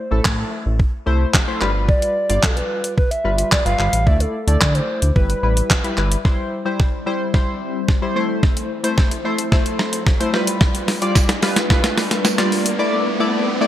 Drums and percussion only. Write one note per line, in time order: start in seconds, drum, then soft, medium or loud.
0.25 kick loud
0.25 snare loud
0.25 clap loud
0.80 kick loud
1.34 kick loud
1.34 snare medium
1.34 clap loud
1.61 clap medium
1.89 kick loud
2.02 closed hi-hat medium
2.30 closed hi-hat medium
2.43 kick loud
2.43 snare loud
2.43 clap loud
2.57 closed hi-hat medium
2.84 closed hi-hat medium
2.98 kick loud
3.11 closed hi-hat medium
3.38 closed hi-hat medium
3.52 kick loud
3.52 snare medium
3.52 clap loud
3.66 closed hi-hat soft
3.79 clap medium
3.93 closed hi-hat medium
4.07 kick loud
4.20 closed hi-hat medium
4.48 closed hi-hat medium
4.61 kick loud
4.61 snare loud
4.61 clap loud
4.75 closed hi-hat soft
5.02 closed hi-hat medium
5.16 kick loud
5.30 closed hi-hat medium
5.57 closed hi-hat medium
5.70 kick loud
5.70 snare medium
5.70 clap loud
5.84 closed hi-hat soft
5.97 clap medium
6.12 closed hi-hat medium
6.25 kick loud
6.25 snare soft
6.80 kick loud
6.80 snare medium
7.34 kick loud
7.34 snare medium
7.88 kick loud
7.88 snare medium
8.43 kick loud
8.43 snare medium
8.57 closed hi-hat medium
8.84 closed hi-hat medium
8.98 kick loud
8.98 snare medium
9.11 closed hi-hat medium
9.38 closed hi-hat medium
9.52 kick loud
9.52 snare medium
9.66 closed hi-hat medium
9.79 snare medium
9.93 closed hi-hat medium
10.07 kick loud
10.07 snare medium
10.21 closed hi-hat soft
10.34 snare medium
10.47 closed hi-hat medium
10.61 kick loud
10.61 snare loud
10.75 closed hi-hat medium
10.88 snare medium
10.88 open hi-hat medium
11.02 closed hi-hat medium
11.15 kick loud
11.15 snare loud
11.15 tambourine medium
11.29 snare loud
11.29 closed hi-hat medium
11.42 snare loud
11.42 open hi-hat medium
11.56 snare loud
11.56 closed hi-hat medium
11.70 kick loud
11.70 snare loud
11.84 snare loud
11.84 closed hi-hat medium
11.98 snare loud
11.98 open hi-hat medium
12.11 snare loud
12.11 closed hi-hat medium
12.25 snare loud
12.25 tambourine medium
12.38 snare loud
12.38 closed hi-hat soft
12.52 open hi-hat medium
12.66 closed hi-hat medium